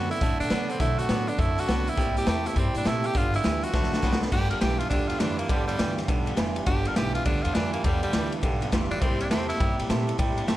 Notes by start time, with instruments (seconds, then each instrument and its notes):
Already playing: upright bass F#2, steel-string acoustic guitar D3 F#3 C4, clean electric guitar B3
0.10 steel-string acoustic guitar C4 D4 A4, tenor saxophone E4, closed hi-hat
0.21 upright bass A2, clean electric guitar D3 A3, steel-string acoustic guitar F#3 C4 D4 A4, kick, closed hi-hat
0.39 upright bass B2, steel-string acoustic guitar C4 D4 A4, tenor saxophone D4, closed hi-hat
0.49 upright bass C3, steel-string acoustic guitar D3 F#3 C4 D4 A4, clean electric guitar B3, snare, closed hi-hat
0.69 tenor saxophone C4, steel-string acoustic guitar C4 D4 A4, closed hi-hat
0.80 upright bass B2, steel-string acoustic guitar D3 F#3 C4 D4 A4, clean electric guitar A3, tenor saxophone E4, kick, closed hi-hat
0.98 steel-string acoustic guitar C4 D4 A4, tenor saxophone F#4, closed hi-hat
1.09 upright bass A2, steel-string acoustic guitar D3 F#3 C4 D4 A4, clean electric guitar B3, snare, closed hi-hat
1.27 steel-string acoustic guitar C4 D4 A4, tenor saxophone D4, closed hi-hat
1.37 upright bass F#2, clean electric guitar D3 A3, steel-string acoustic guitar F#3 C4 D4 A4, tenor saxophone E4, kick, closed hi-hat
1.56 steel-string acoustic guitar C4 D4 A4, closed hi-hat
1.60 tenor saxophone F#4
1.66 upright bass C2, steel-string acoustic guitar D3 F#3 C4 D4 A4, clean electric guitar B3, snare, closed hi-hat
1.84 steel-string acoustic guitar C4 D4 A4, closed hi-hat
1.90 tenor saxophone E4
1.95 upright bass C2, steel-string acoustic guitar C3 G3 A#3 E4 G4, kick, closed hi-hat
2.14 steel-string acoustic guitar A#3 E4 G4, closed hi-hat
2.18 tenor saxophone G4
2.25 upright bass E2, steel-string acoustic guitar C3 G3 A#3 E4 G4, clean electric guitar A3, snare, closed hi-hat
2.29 tenor saxophone G4
2.44 steel-string acoustic guitar A#3 E4 G4, tenor saxophone E4, snare, closed hi-hat
2.54 upright bass G2, clean electric guitar C3, steel-string acoustic guitar G3 A#3 E4 G4, kick, closed hi-hat
2.59 tenor saxophone C4
2.73 upright bass A2, steel-string acoustic guitar A#3 E4 G4, closed hi-hat
2.78 tenor saxophone D4
2.83 upright bass A#2, steel-string acoustic guitar C3 G3 A#3 E4 G4, clean electric guitar A3, snare, closed hi-hat
2.88 tenor saxophone E4
3.03 steel-string acoustic guitar A#3 E4 G4, tenor saxophone G4, closed hi-hat
3.13 upright bass G1, steel-string acoustic guitar G2 D3 F3 B3 F4 G4, tenor saxophone F4, kick, closed hi-hat
3.32 steel-string acoustic guitar F3 B3 F4 G4, tenor saxophone E4, closed hi-hat
3.42 upright bass D2, steel-string acoustic guitar G2 D3 F3 B3 F4 G4, clean electric guitar E3, snare, closed hi-hat
3.61 steel-string acoustic guitar F3 B3 F4 G4, tenor saxophone F#4, closed hi-hat
3.73 upright bass D2, clean electric guitar D3 A3, steel-string acoustic guitar F#3 C4 D4 A4, kick, snare
3.83 snare
3.91 steel-string acoustic guitar C4 D4 A4, snare
4.02 upright bass C2, steel-string acoustic guitar D3 F#3 C4 D4 A4, clean electric guitar B3, kick, snare
4.13 snare
4.21 steel-string acoustic guitar C4 D4 A4, snare
4.32 upright bass G1, steel-string acoustic guitar G2 D3 F3 B3 F4 G4, tenor saxophone G4, kick, crash
4.50 steel-string acoustic guitar F3 B3 F4 G4, tenor saxophone A#4, ride
4.61 upright bass B1, steel-string acoustic guitar G2 D3 F3 B3 F4 G4, clean electric guitar E3, tenor saxophone G4, snare, ride
4.79 steel-string acoustic guitar F3 B3 F4 G4, tenor saxophone F4, ride
4.90 upright bass D2, clean electric guitar G2 D3, steel-string acoustic guitar F3 B3 F4 G4, tenor saxophone D4, kick, ride
5.08 upright bass E2, steel-string acoustic guitar F3 B3 F4 G4, tenor saxophone F4, ride
5.20 upright bass F2, steel-string acoustic guitar G2 D3 F3 B3 F4 G4, clean electric guitar E3, tenor saxophone D4, snare, ride
5.38 steel-string acoustic guitar F3 B3 F4 G4, tenor saxophone A#3, ride
5.49 upright bass E2, steel-string acoustic guitar G2 D3 F3 B3 F4 G4, tenor saxophone G3, kick, ride
5.67 steel-string acoustic guitar F3 B3 F4 G4, tenor saxophone G3, ride
5.79 upright bass D2, steel-string acoustic guitar G2 D3 F3 B3 F4 G4, clean electric guitar E3, snare, ride
5.97 steel-string acoustic guitar F3 B3 F4 G4, snare, ride
6.08 upright bass B1, clean electric guitar G2 D3, steel-string acoustic guitar F3 B3 F4 G4, kick, ride
6.26 steel-string acoustic guitar F3 B3 F4 G4, ride
6.37 upright bass F1, steel-string acoustic guitar G2 D3 F3 B3 F4 G4, clean electric guitar E3, snare, ride
6.56 steel-string acoustic guitar F3 B3 F4 G4, ride
6.66 upright bass G1, steel-string acoustic guitar G2 D3 F3 B3 F4 G4, tenor saxophone G4, kick, ride
6.85 steel-string acoustic guitar F3 B3 F4 G4, tenor saxophone A#4, ride
6.96 upright bass B1, steel-string acoustic guitar G2 D3 F3 B3 F4 G4, clean electric guitar E3, tenor saxophone G4, snare, ride
7.15 steel-string acoustic guitar F3 B3 F4 G4, tenor saxophone F4, ride
7.25 upright bass D2, clean electric guitar G2 D3, steel-string acoustic guitar F3 B3 F4 G4, tenor saxophone D4, kick, ride
7.43 upright bass E2, steel-string acoustic guitar B3 F4 G4, tenor saxophone F4, ride
7.47 steel-string acoustic guitar F3
7.55 upright bass F2, steel-string acoustic guitar G2 D3 F3 B3 F4 G4, clean electric guitar E3, tenor saxophone D4, snare, ride
7.73 steel-string acoustic guitar F3 B3 F4 G4, tenor saxophone A#3, ride
7.84 upright bass E2, steel-string acoustic guitar G2 D3 F3 B3 F4 G4, tenor saxophone G3, kick, ride
8.03 steel-string acoustic guitar F3 B3 F4 G4, tenor saxophone G3, ride
8.13 upright bass D2, steel-string acoustic guitar G2 D3 F3 B3 F4 G4, clean electric guitar E3, snare, ride
8.31 steel-string acoustic guitar F3 B3 F4 G4, ride
8.42 upright bass B1, clean electric guitar G2 D3, steel-string acoustic guitar F3 B3 F4 G4, kick, ride
8.61 steel-string acoustic guitar F3 B3 F4 G4, ride
8.72 upright bass F1, steel-string acoustic guitar G2 D3 F3 B3 F4 G4, clean electric guitar E3, kick, snare, ride
8.91 steel-string acoustic guitar F3 B3 F4 G4, tenor saxophone D4, ride
9.01 upright bass C2, steel-string acoustic guitar C3 G3 A#3 E4 G4, tenor saxophone C4, kick, ride
9.19 steel-string acoustic guitar A#3 E4 G4, tenor saxophone D4, ride
9.30 upright bass E2, steel-string acoustic guitar C3 G3 A#3 E4 G4, clean electric guitar A3, tenor saxophone C4, snare, ride
9.49 steel-string acoustic guitar A#3 E4 G4, tenor saxophone E4, snare, ride
9.60 upright bass G2, clean electric guitar C3, steel-string acoustic guitar G3 A#3 E4 G4, kick, ride
9.79 upright bass A2, steel-string acoustic guitar A#3 E4 G4, ride
9.89 upright bass A#2, steel-string acoustic guitar C3 G3 A#3 E4 G4, clean electric guitar A3, snare, ride
10.07 steel-string acoustic guitar A#3 E4 G4, ride
10.18 upright bass A2, steel-string acoustic guitar C3 G3 A#3 E4 G4, kick, ride
10.37 steel-string acoustic guitar A#3 E4 G4, ride
10.48 upright bass G2, steel-string acoustic guitar C3 G3 A#3 E4 G4, clean electric guitar A3, snare, ride